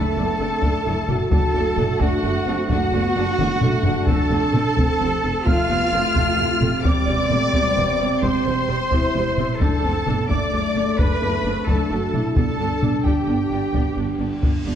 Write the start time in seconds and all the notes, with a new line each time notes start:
Already playing: D3 A3 A4 A5
0.17 F#1 A3 B3 D4
0.39 F#1 A3 C4 D4
0.62 F#1 A3 D4, taiko
0.84 F#1 A3 D4 E4
1.07 F#1 A3 D4 F#4, taiko low-mid
1.31 F#1 D3 A3 D4 A4 A5, taiko
1.54 F#1 A3 D4
1.77 F#1 A3 D4, taiko low-mid
1.99 F#1 A3 D4 F#4 F#5, taiko
2.22 F#1 A3 D4
2.46 F#1 A3 C4 D4
2.68 F#1 A3 D4 F#4 F#5, taiko
2.92 F#1 A3 B3 D4
3.16 F#1 A3 D4
3.39 F#1 A3 B3 D4, taiko mid
3.61 F#1 A3 D4, taiko low-mid
3.84 F#1 A3 D4, taiko low
4.07 F1 C3 A3 C4 A4 A5, taiko
4.31 F1 A3 C4
4.54 F1 A3 C4, taiko low-mid
4.76 F1 A3 C4, taiko
5.00 F1 A3 C4
5.24 F1 A3 C4
5.45 F1 A3 C4 F4 F5 F6, taiko
5.69 F1 A3 B3 C4
5.92 F1 A3 C4
6.16 F1 A3 C4, taiko
6.38 F1 A3 C4
6.61 F1 A3 C4, taiko low-mid
6.84 E1 G3 C4 D5 D6, taiko
7.08 E1 G3 B3 C4
7.31 E1 G3 A3 C4, taiko low-mid
7.53 E1 G3 C4, taiko
7.76 E1 G3 B3 C4
7.99 E1 G3 C4
8.22 E1 G3 C4 C5 C6, taiko
8.46 E1 G3 C4
8.68 E1 G3 C4
8.91 E1 G3 C4 E4, taiko
9.14 E1 G3 C4
9.37 E1 G3 C4, taiko low-mid
9.60 F#1 D3 A3 D4 A4 A5, taiko
9.83 F#1 A3 C4 D4
10.07 F#1 A3 B3 D4, taiko low-mid
10.29 F#1 A3 D4 D5 D6, taiko
10.53 F#1 A3 D4
10.76 F#1 A3 D4
10.98 F#1 A3 D4 B4 B5, taiko
11.21 F#1 A3 B3 D4
11.45 F#1 A3 C4 D4
11.67 F#1 A3 D4 A4 A5, taiko
11.91 F#1 A3 D4 F#4
12.13 F#1 A3 D4 E4, taiko low-mid
12.35 G1 B3 D4 A4 A5, taiko, reverse cymbal
12.59 G1 B3 D4
12.82 G1 B3 D4, taiko low-mid
13.05 G1 B3 D4 G4 G5, taiko
13.28 G1 B3 D4
13.51 G1 B3 D4
13.74 G1 B3 D4, taiko
13.97 G1 B3 D4
14.19 G1 B3 D4
14.43 G1 B3 D4, taiko
14.66 G1 B3 D4